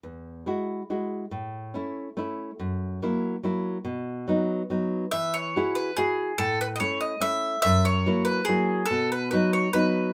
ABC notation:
X:1
M:3/4
L:1/16
Q:"Swing" 1/4=142
K:E
V:1 name="Mandolin"
z12 | z12 | z12 | z12 |
e2 c4 B2 G4 | A2 B3/2 d/2 c2 d2 e4 | e2 c4 B2 G4 | A2 B2 B2 c2 B4 |]
V:2 name="Nylon-string guitar"
E,,4 [G,EF]4 [G,EF]4 | A,,4 [A,CE]4 [A,CE]4 | F,,4 [F,^A,E]4 [F,A,E]4 | B,,4 [F,B,D]4 [F,B,D]4 |
E,4 [EFG]4 [EFG]4 | A,,4 [A,CE]4 [A,CE]4 | F,,4 [F,^A,E]4 [F,A,E]4 | B,,4 [F,B,D]4 [F,B,D]4 |]